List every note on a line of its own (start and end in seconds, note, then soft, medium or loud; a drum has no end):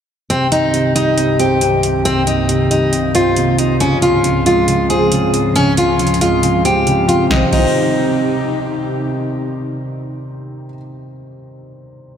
0.30 3.77 C2 medium
0.30 3.77 G2 medium
0.30 0.72 C3 medium
0.30 3.77 D#3 medium
0.30 0.47 C4 loud
0.30 2.03 C4 medium
0.30 closed hi-hat medium
0.52 0.93 D#4 medium
0.52 closed hi-hat medium
0.74 1.16 C3 medium
0.74 closed hi-hat medium
0.95 2.05 G3 medium
0.95 1.37 D#4 medium
0.95 closed hi-hat medium
1.18 1.60 C3 medium
1.18 closed hi-hat medium
1.39 2.49 C4 medium
1.39 2.01 G4 medium
1.39 closed hi-hat medium
1.61 2.03 C3 medium
1.61 closed hi-hat medium
1.83 closed hi-hat medium
2.05 2.47 C3 medium
2.05 3.79 A#3 medium
2.05 2.22 C4 loud
2.05 closed hi-hat medium
2.27 2.68 D#4 medium
2.27 closed hi-hat medium
2.49 2.90 C3 medium
2.49 closed hi-hat medium
2.70 3.80 G3 medium
2.70 3.12 D#4 medium
2.70 closed hi-hat medium
2.92 3.35 C3 medium
2.92 closed hi-hat medium
3.15 3.80 C4 medium
3.15 3.56 F4 medium
3.15 closed hi-hat medium
3.36 3.80 C3 medium
3.36 closed hi-hat medium
3.58 3.75 D#4 medium
3.58 closed hi-hat medium
3.80 7.27 C#2 medium
3.80 7.27 G#2 medium
3.80 4.22 C#3 medium
3.80 7.27 F3 medium
3.80 7.27 C4 medium
3.80 3.97 C#4 loud
3.80 closed hi-hat medium
4.02 4.43 F4 medium
4.02 closed hi-hat medium
4.24 4.66 C#3 medium
4.24 closed hi-hat medium
4.46 5.56 G#3 medium
4.46 4.87 F4 medium
4.46 closed hi-hat medium
4.67 5.10 C#3 medium
4.67 closed hi-hat medium
4.90 5.99 C4 medium
4.90 5.52 G#4 medium
4.90 closed hi-hat medium
5.12 5.54 C#3 medium
5.12 closed hi-hat medium
5.34 closed hi-hat medium
5.56 5.98 C#3 medium
5.56 5.72 C#4 loud
5.56 closed hi-hat medium
5.77 6.19 F4 medium
5.77 closed hi-hat medium
5.99 6.42 C#3 medium
5.99 closed hi-hat medium
6.07 closed hi-hat medium
6.14 closed hi-hat soft
6.21 7.31 G#3 medium
6.21 6.62 F4 medium
6.21 closed hi-hat medium
6.43 6.85 C#3 medium
6.43 closed hi-hat medium
6.65 7.31 C4 medium
6.65 7.06 G4 medium
6.65 closed hi-hat medium
6.87 7.31 C#3 medium
6.87 closed hi-hat medium
7.08 7.25 F4 medium
7.08 closed hi-hat medium
7.25 7.40 C3 medium
7.29 10.49 C3 medium
7.29 7.42 D#3 medium
7.29 10.49 C4 medium
7.29 10.49 D#4 medium
7.29 7.43 D#4 medium
7.29 10.49 G4 medium
7.29 kick loud
7.29 snare medium
7.33 7.44 G3 medium
7.37 7.46 C4 medium
7.47 10.65 C3 medium
7.51 10.69 D#3 medium
7.51 10.73 G3 medium
7.51 8.58 D#4 medium
7.51 kick loud
7.51 crash medium
7.59 10.77 C4 medium